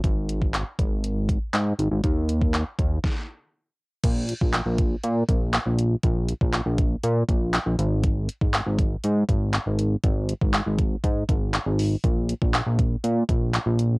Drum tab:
CC |----------------|----------------|x---------------|----------------|
HH |x-x-x-x-x-x-x-x-|x-x-x-x---------|x-x-x-x-x-x-x-x-|x-x-x-x-x-x-x-x-|
CP |----x-------x---|----x-----------|----x-------x---|----x-------x---|
SD |----------------|--------o-------|----------------|----------------|
BD |o--o--o---o-----|o--o--o-o-------|o--o--o---o-----|o--o--o---o-----|

CC |----------------|----------------|----------------|
HH |x-x-x-x-x-x-x-x-|x-x-x-x-x-x-x-o-|x-x-x-x-x-x-x-x-|
CP |----x-------x---|----x-------x---|----x-------x---|
SD |----------------|----------------|----------------|
BD |o--o--o---o-----|o--o--o-o-o-----|o--o--o---o-----|